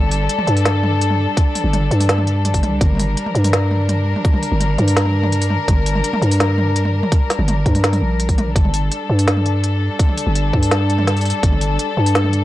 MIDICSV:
0, 0, Header, 1, 4, 480
1, 0, Start_track
1, 0, Key_signature, -2, "minor"
1, 0, Tempo, 359281
1, 1832, Time_signature, 4, 2, 24, 8
1, 16621, End_track
2, 0, Start_track
2, 0, Title_t, "String section"
2, 0, Program_c, 0, 48
2, 0, Note_on_c, 0, 55, 79
2, 0, Note_on_c, 0, 62, 74
2, 0, Note_on_c, 0, 69, 88
2, 3723, Note_off_c, 0, 69, 0
2, 3758, Note_on_c, 0, 70, 88
2, 11376, Note_off_c, 0, 55, 0
2, 11376, Note_off_c, 0, 62, 0
2, 11406, Note_off_c, 0, 70, 0
2, 11440, Note_on_c, 0, 69, 88
2, 11441, Note_on_c, 0, 62, 78
2, 11443, Note_on_c, 0, 55, 82
2, 16621, Note_off_c, 0, 55, 0
2, 16621, Note_off_c, 0, 62, 0
2, 16621, Note_off_c, 0, 69, 0
2, 16621, End_track
3, 0, Start_track
3, 0, Title_t, "808-style bass"
3, 0, Program_c, 1, 38
3, 0, Note_on_c, 1, 31, 97
3, 376, Note_off_c, 1, 31, 0
3, 631, Note_on_c, 1, 43, 95
3, 1698, Note_off_c, 1, 43, 0
3, 2191, Note_on_c, 1, 31, 84
3, 2535, Note_off_c, 1, 31, 0
3, 2549, Note_on_c, 1, 43, 91
3, 3393, Note_on_c, 1, 31, 81
3, 3413, Note_off_c, 1, 43, 0
3, 3512, Note_on_c, 1, 36, 101
3, 3532, Note_off_c, 1, 31, 0
3, 3733, Note_off_c, 1, 36, 0
3, 3754, Note_on_c, 1, 31, 98
3, 4218, Note_off_c, 1, 31, 0
3, 4472, Note_on_c, 1, 43, 94
3, 5539, Note_off_c, 1, 43, 0
3, 6036, Note_on_c, 1, 31, 82
3, 6378, Note_off_c, 1, 31, 0
3, 6393, Note_on_c, 1, 43, 95
3, 7459, Note_off_c, 1, 43, 0
3, 7589, Note_on_c, 1, 31, 96
3, 8056, Note_off_c, 1, 31, 0
3, 8306, Note_on_c, 1, 43, 89
3, 9375, Note_off_c, 1, 43, 0
3, 9870, Note_on_c, 1, 31, 84
3, 10215, Note_off_c, 1, 31, 0
3, 10231, Note_on_c, 1, 43, 93
3, 10711, Note_on_c, 1, 34, 93
3, 10731, Note_off_c, 1, 43, 0
3, 11417, Note_off_c, 1, 34, 0
3, 11430, Note_on_c, 1, 31, 97
3, 11896, Note_off_c, 1, 31, 0
3, 12153, Note_on_c, 1, 43, 93
3, 13219, Note_off_c, 1, 43, 0
3, 13716, Note_on_c, 1, 31, 85
3, 14058, Note_off_c, 1, 31, 0
3, 14073, Note_on_c, 1, 43, 88
3, 15139, Note_off_c, 1, 43, 0
3, 15273, Note_on_c, 1, 31, 98
3, 15737, Note_off_c, 1, 31, 0
3, 15995, Note_on_c, 1, 43, 88
3, 16621, Note_off_c, 1, 43, 0
3, 16621, End_track
4, 0, Start_track
4, 0, Title_t, "Drums"
4, 153, Note_on_c, 9, 46, 61
4, 287, Note_off_c, 9, 46, 0
4, 393, Note_on_c, 9, 42, 70
4, 515, Note_on_c, 9, 45, 79
4, 526, Note_off_c, 9, 42, 0
4, 633, Note_on_c, 9, 42, 40
4, 649, Note_off_c, 9, 45, 0
4, 757, Note_on_c, 9, 46, 64
4, 767, Note_off_c, 9, 42, 0
4, 874, Note_on_c, 9, 38, 127
4, 874, Note_on_c, 9, 42, 83
4, 874, Note_on_c, 9, 45, 54
4, 890, Note_off_c, 9, 46, 0
4, 1007, Note_off_c, 9, 38, 0
4, 1007, Note_off_c, 9, 42, 0
4, 1007, Note_off_c, 9, 45, 0
4, 1113, Note_on_c, 9, 45, 76
4, 1247, Note_off_c, 9, 45, 0
4, 1355, Note_on_c, 9, 42, 71
4, 1474, Note_on_c, 9, 45, 49
4, 1488, Note_off_c, 9, 42, 0
4, 1608, Note_off_c, 9, 45, 0
4, 1830, Note_on_c, 9, 36, 127
4, 1833, Note_on_c, 9, 42, 81
4, 1964, Note_off_c, 9, 36, 0
4, 1967, Note_off_c, 9, 42, 0
4, 2074, Note_on_c, 9, 45, 47
4, 2074, Note_on_c, 9, 46, 63
4, 2208, Note_off_c, 9, 45, 0
4, 2208, Note_off_c, 9, 46, 0
4, 2315, Note_on_c, 9, 42, 67
4, 2315, Note_on_c, 9, 45, 78
4, 2449, Note_off_c, 9, 42, 0
4, 2449, Note_off_c, 9, 45, 0
4, 2554, Note_on_c, 9, 42, 37
4, 2677, Note_on_c, 9, 45, 51
4, 2677, Note_on_c, 9, 46, 64
4, 2688, Note_off_c, 9, 42, 0
4, 2792, Note_on_c, 9, 38, 127
4, 2792, Note_on_c, 9, 42, 82
4, 2810, Note_off_c, 9, 45, 0
4, 2810, Note_off_c, 9, 46, 0
4, 2915, Note_on_c, 9, 45, 75
4, 2925, Note_off_c, 9, 38, 0
4, 2925, Note_off_c, 9, 42, 0
4, 3034, Note_on_c, 9, 42, 37
4, 3049, Note_off_c, 9, 45, 0
4, 3167, Note_off_c, 9, 42, 0
4, 3272, Note_on_c, 9, 42, 66
4, 3272, Note_on_c, 9, 45, 51
4, 3393, Note_on_c, 9, 46, 63
4, 3394, Note_on_c, 9, 36, 66
4, 3405, Note_off_c, 9, 42, 0
4, 3405, Note_off_c, 9, 45, 0
4, 3513, Note_on_c, 9, 42, 40
4, 3513, Note_on_c, 9, 45, 85
4, 3527, Note_off_c, 9, 36, 0
4, 3527, Note_off_c, 9, 46, 0
4, 3647, Note_off_c, 9, 42, 0
4, 3647, Note_off_c, 9, 45, 0
4, 3752, Note_on_c, 9, 36, 124
4, 3756, Note_on_c, 9, 42, 77
4, 3756, Note_on_c, 9, 45, 24
4, 3787, Note_off_c, 9, 45, 0
4, 3787, Note_on_c, 9, 45, 27
4, 3819, Note_off_c, 9, 45, 0
4, 3819, Note_on_c, 9, 45, 30
4, 3848, Note_off_c, 9, 45, 0
4, 3848, Note_on_c, 9, 45, 31
4, 3879, Note_off_c, 9, 45, 0
4, 3879, Note_on_c, 9, 45, 37
4, 3886, Note_off_c, 9, 36, 0
4, 3890, Note_off_c, 9, 42, 0
4, 3910, Note_off_c, 9, 45, 0
4, 3910, Note_on_c, 9, 45, 41
4, 3941, Note_off_c, 9, 45, 0
4, 3941, Note_on_c, 9, 45, 43
4, 3970, Note_off_c, 9, 45, 0
4, 3970, Note_on_c, 9, 45, 48
4, 4000, Note_off_c, 9, 45, 0
4, 4000, Note_on_c, 9, 45, 74
4, 4000, Note_on_c, 9, 46, 67
4, 4133, Note_off_c, 9, 45, 0
4, 4133, Note_off_c, 9, 46, 0
4, 4237, Note_on_c, 9, 42, 64
4, 4360, Note_on_c, 9, 45, 54
4, 4371, Note_off_c, 9, 42, 0
4, 4479, Note_on_c, 9, 42, 36
4, 4494, Note_off_c, 9, 45, 0
4, 4601, Note_on_c, 9, 45, 77
4, 4601, Note_on_c, 9, 46, 68
4, 4613, Note_off_c, 9, 42, 0
4, 4719, Note_on_c, 9, 38, 120
4, 4719, Note_on_c, 9, 42, 80
4, 4735, Note_off_c, 9, 45, 0
4, 4735, Note_off_c, 9, 46, 0
4, 4853, Note_off_c, 9, 38, 0
4, 4853, Note_off_c, 9, 42, 0
4, 4957, Note_on_c, 9, 45, 51
4, 5090, Note_off_c, 9, 45, 0
4, 5197, Note_on_c, 9, 42, 63
4, 5197, Note_on_c, 9, 45, 75
4, 5330, Note_off_c, 9, 42, 0
4, 5330, Note_off_c, 9, 45, 0
4, 5559, Note_on_c, 9, 45, 52
4, 5673, Note_on_c, 9, 36, 121
4, 5675, Note_on_c, 9, 42, 77
4, 5693, Note_off_c, 9, 45, 0
4, 5793, Note_on_c, 9, 45, 80
4, 5806, Note_off_c, 9, 36, 0
4, 5808, Note_off_c, 9, 42, 0
4, 5914, Note_on_c, 9, 46, 67
4, 5927, Note_off_c, 9, 45, 0
4, 6047, Note_off_c, 9, 46, 0
4, 6152, Note_on_c, 9, 42, 66
4, 6152, Note_on_c, 9, 45, 56
4, 6286, Note_off_c, 9, 42, 0
4, 6286, Note_off_c, 9, 45, 0
4, 6391, Note_on_c, 9, 42, 35
4, 6391, Note_on_c, 9, 45, 78
4, 6515, Note_on_c, 9, 46, 67
4, 6524, Note_off_c, 9, 42, 0
4, 6524, Note_off_c, 9, 45, 0
4, 6634, Note_on_c, 9, 38, 120
4, 6634, Note_on_c, 9, 42, 75
4, 6649, Note_off_c, 9, 46, 0
4, 6754, Note_on_c, 9, 45, 51
4, 6767, Note_off_c, 9, 38, 0
4, 6767, Note_off_c, 9, 42, 0
4, 6888, Note_off_c, 9, 45, 0
4, 6993, Note_on_c, 9, 45, 84
4, 7113, Note_on_c, 9, 42, 64
4, 7126, Note_off_c, 9, 45, 0
4, 7236, Note_on_c, 9, 46, 68
4, 7246, Note_off_c, 9, 42, 0
4, 7352, Note_on_c, 9, 45, 58
4, 7369, Note_off_c, 9, 46, 0
4, 7485, Note_off_c, 9, 45, 0
4, 7590, Note_on_c, 9, 36, 122
4, 7591, Note_on_c, 9, 42, 80
4, 7591, Note_on_c, 9, 45, 85
4, 7724, Note_off_c, 9, 36, 0
4, 7725, Note_off_c, 9, 42, 0
4, 7725, Note_off_c, 9, 45, 0
4, 7832, Note_on_c, 9, 46, 69
4, 7954, Note_on_c, 9, 45, 58
4, 7966, Note_off_c, 9, 46, 0
4, 8071, Note_on_c, 9, 42, 69
4, 8088, Note_off_c, 9, 45, 0
4, 8194, Note_on_c, 9, 45, 88
4, 8204, Note_off_c, 9, 42, 0
4, 8314, Note_on_c, 9, 42, 35
4, 8328, Note_off_c, 9, 45, 0
4, 8436, Note_on_c, 9, 46, 72
4, 8447, Note_off_c, 9, 42, 0
4, 8554, Note_on_c, 9, 38, 116
4, 8554, Note_on_c, 9, 42, 78
4, 8554, Note_on_c, 9, 45, 56
4, 8570, Note_off_c, 9, 46, 0
4, 8687, Note_off_c, 9, 38, 0
4, 8687, Note_off_c, 9, 42, 0
4, 8687, Note_off_c, 9, 45, 0
4, 8792, Note_on_c, 9, 45, 77
4, 8925, Note_off_c, 9, 45, 0
4, 9031, Note_on_c, 9, 42, 66
4, 9154, Note_on_c, 9, 45, 53
4, 9164, Note_off_c, 9, 42, 0
4, 9287, Note_off_c, 9, 45, 0
4, 9394, Note_on_c, 9, 45, 81
4, 9511, Note_on_c, 9, 36, 122
4, 9513, Note_on_c, 9, 42, 83
4, 9528, Note_off_c, 9, 45, 0
4, 9644, Note_off_c, 9, 36, 0
4, 9646, Note_off_c, 9, 42, 0
4, 9754, Note_on_c, 9, 38, 59
4, 9754, Note_on_c, 9, 46, 67
4, 9875, Note_on_c, 9, 45, 58
4, 9888, Note_off_c, 9, 38, 0
4, 9888, Note_off_c, 9, 46, 0
4, 9993, Note_off_c, 9, 45, 0
4, 9993, Note_on_c, 9, 42, 69
4, 9993, Note_on_c, 9, 45, 88
4, 10127, Note_off_c, 9, 42, 0
4, 10127, Note_off_c, 9, 45, 0
4, 10231, Note_on_c, 9, 36, 61
4, 10231, Note_on_c, 9, 42, 39
4, 10354, Note_on_c, 9, 45, 58
4, 10354, Note_on_c, 9, 46, 68
4, 10365, Note_off_c, 9, 36, 0
4, 10365, Note_off_c, 9, 42, 0
4, 10472, Note_on_c, 9, 38, 117
4, 10472, Note_on_c, 9, 42, 81
4, 10487, Note_off_c, 9, 45, 0
4, 10487, Note_off_c, 9, 46, 0
4, 10594, Note_on_c, 9, 45, 84
4, 10594, Note_on_c, 9, 46, 39
4, 10605, Note_off_c, 9, 38, 0
4, 10605, Note_off_c, 9, 42, 0
4, 10727, Note_off_c, 9, 45, 0
4, 10727, Note_off_c, 9, 46, 0
4, 10951, Note_on_c, 9, 42, 66
4, 11073, Note_on_c, 9, 36, 62
4, 11074, Note_on_c, 9, 46, 64
4, 11085, Note_off_c, 9, 42, 0
4, 11196, Note_on_c, 9, 42, 41
4, 11196, Note_on_c, 9, 45, 92
4, 11207, Note_off_c, 9, 36, 0
4, 11207, Note_off_c, 9, 46, 0
4, 11330, Note_off_c, 9, 42, 0
4, 11330, Note_off_c, 9, 45, 0
4, 11432, Note_on_c, 9, 36, 124
4, 11437, Note_on_c, 9, 42, 84
4, 11557, Note_on_c, 9, 45, 57
4, 11565, Note_off_c, 9, 36, 0
4, 11570, Note_off_c, 9, 42, 0
4, 11673, Note_on_c, 9, 46, 67
4, 11690, Note_off_c, 9, 45, 0
4, 11807, Note_off_c, 9, 46, 0
4, 11912, Note_on_c, 9, 42, 73
4, 12046, Note_off_c, 9, 42, 0
4, 12277, Note_on_c, 9, 46, 67
4, 12394, Note_on_c, 9, 38, 123
4, 12394, Note_on_c, 9, 42, 88
4, 12411, Note_off_c, 9, 46, 0
4, 12517, Note_on_c, 9, 45, 56
4, 12527, Note_off_c, 9, 38, 0
4, 12527, Note_off_c, 9, 42, 0
4, 12635, Note_on_c, 9, 42, 39
4, 12650, Note_off_c, 9, 45, 0
4, 12768, Note_off_c, 9, 42, 0
4, 12874, Note_on_c, 9, 42, 70
4, 13008, Note_off_c, 9, 42, 0
4, 13352, Note_on_c, 9, 36, 127
4, 13355, Note_on_c, 9, 42, 82
4, 13477, Note_on_c, 9, 45, 54
4, 13486, Note_off_c, 9, 36, 0
4, 13488, Note_off_c, 9, 42, 0
4, 13594, Note_on_c, 9, 46, 64
4, 13611, Note_off_c, 9, 45, 0
4, 13728, Note_off_c, 9, 46, 0
4, 13833, Note_on_c, 9, 42, 71
4, 13967, Note_off_c, 9, 42, 0
4, 14072, Note_on_c, 9, 36, 64
4, 14196, Note_on_c, 9, 46, 65
4, 14206, Note_off_c, 9, 36, 0
4, 14313, Note_on_c, 9, 38, 126
4, 14313, Note_on_c, 9, 42, 86
4, 14330, Note_off_c, 9, 46, 0
4, 14447, Note_off_c, 9, 38, 0
4, 14447, Note_off_c, 9, 42, 0
4, 14556, Note_on_c, 9, 42, 37
4, 14675, Note_on_c, 9, 45, 84
4, 14690, Note_off_c, 9, 42, 0
4, 14795, Note_on_c, 9, 38, 66
4, 14795, Note_on_c, 9, 42, 70
4, 14809, Note_off_c, 9, 45, 0
4, 14918, Note_on_c, 9, 46, 27
4, 14929, Note_off_c, 9, 38, 0
4, 14929, Note_off_c, 9, 42, 0
4, 14977, Note_off_c, 9, 46, 0
4, 14977, Note_on_c, 9, 46, 36
4, 15036, Note_off_c, 9, 46, 0
4, 15036, Note_on_c, 9, 46, 46
4, 15097, Note_off_c, 9, 46, 0
4, 15097, Note_on_c, 9, 46, 55
4, 15231, Note_off_c, 9, 46, 0
4, 15273, Note_on_c, 9, 36, 127
4, 15274, Note_on_c, 9, 42, 80
4, 15398, Note_on_c, 9, 45, 56
4, 15406, Note_off_c, 9, 36, 0
4, 15408, Note_off_c, 9, 42, 0
4, 15514, Note_on_c, 9, 46, 62
4, 15532, Note_off_c, 9, 45, 0
4, 15648, Note_off_c, 9, 46, 0
4, 15754, Note_on_c, 9, 42, 71
4, 15888, Note_off_c, 9, 42, 0
4, 16116, Note_on_c, 9, 46, 66
4, 16235, Note_on_c, 9, 38, 127
4, 16235, Note_on_c, 9, 42, 87
4, 16250, Note_off_c, 9, 46, 0
4, 16357, Note_on_c, 9, 45, 54
4, 16368, Note_off_c, 9, 38, 0
4, 16368, Note_off_c, 9, 42, 0
4, 16473, Note_on_c, 9, 42, 37
4, 16491, Note_off_c, 9, 45, 0
4, 16607, Note_off_c, 9, 42, 0
4, 16621, End_track
0, 0, End_of_file